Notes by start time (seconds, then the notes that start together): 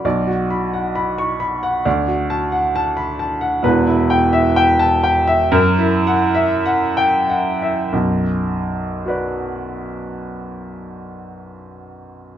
0.05 B1 D5
0.27 F#4
0.50 B5
0.73 F#5
0.95 B5
1.18 C#6
1.40 B5
1.63 F#5
1.85 D2 D5
2.08 F#4
2.30 A5
2.52 F#5
2.76 A5
2.97 B5
3.19 A5
3.41 F#5
3.63 E1 E2 B4
3.87 E4
4.10 G5
4.33 E5
4.56 G5
4.79 A5
5.04 G5
5.27 E5
5.52 F#2 A#4
5.79 E4
6.07 F#5
6.35 E5
6.66 F#5
6.97 G5
7.30 F#5
7.62 E5
7.93 B1 F#2
9.05 F#4 B4
9.09 D5